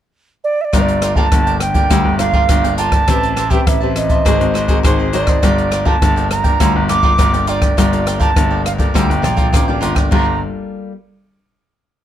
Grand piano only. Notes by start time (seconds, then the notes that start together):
0.73 G1
1.32 G1
1.91 D2
2.05 G1
2.49 G1
3.08 A1
3.67 A1
4.26 G#1
4.40 G#1
4.84 G#1
5.43 G1
6.02 G1
6.61 D2
6.76 G1
7.19 G1
7.78 G1
8.36 G1
8.95 D2
9.10 G1
9.23 A#1
9.54 A1
9.82 G1
10.12 G1